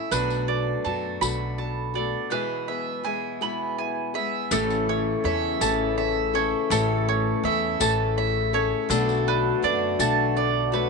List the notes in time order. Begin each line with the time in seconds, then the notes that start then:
Already playing: A3 C#4 E4 A4 E5 A5 C#6
0.11 B1 B2 F#3 A3 B3 D4 F#4 A4 B4 D5, tambourine
0.30 tambourine
0.48 B3 F#4 A4 D5
0.84 F#2 F#3 A3 B3 D4 F#4 A4 D5 A5
1.21 B1 B2 F#3 A3 B3 D4 F#4 A4 D5 B5, tambourine
1.58 B3 F#4 A4 D5 A5
1.94 A3 B3 D4 F#4 A4 D5
2.30 B1 B2 E3 G#3 B3 E4 G#4 B4 E5
2.68 B3 E4 G#4 B4 E5
3.03 E3 G#3 B3 E4 G#4 E5 G#5
3.41 B2 E3 G#3 B3 E4 G#4 E5 B5
3.78 B3 E4 G#4 E5 G#5
4.14 G#3 B3 E4 G#4 E5
4.51 A1 A2 C#3 E3 A3 C#4 E4 A4 C#5 E5, tambourine
4.70 tambourine
4.89 A3 C#4 E4 C#5 E5
5.24 E2 E3 A3 C#4 E4 A4 C#5 E5
5.61 A1 A2 E3 A3 C#4 E4 A4 C#5 E5 A5, tambourine
5.98 A3 C#4 E4 C#5 E5
6.34 A3 C#4 E4 A4 C#5 E5
6.70 A1 A2 E3 A3 C#4 E4 A4 C#5 E5, tambourine
7.08 A3 C#4 E4 C#5 E5
7.43 E2 E3 A3 C#4 E4 A4 C#5 E5
7.80 A1 A2 E3 A3 C#4 E4 A4 C#5 E5 A5, tambourine
8.17 A3 C#4 E4 C#5 E5
8.53 A3 C#4 E4 A4 C#5 E5
8.88 B1 B2 D3 F#3 A3 B3 D4 F#4 A4 B4 D5, tambourine
9.09 tambourine
9.27 A3 D4 F#4 B4 D5
9.62 F#2 F#3 A3 D4 F#4 B4 D5
9.99 B1 B2 F#3 A3 D4 F#4 B4 E5 A5, tambourine
10.36 A3 D4 F#4 B4 D5
10.72 A3 D4 F#4 B4 C#5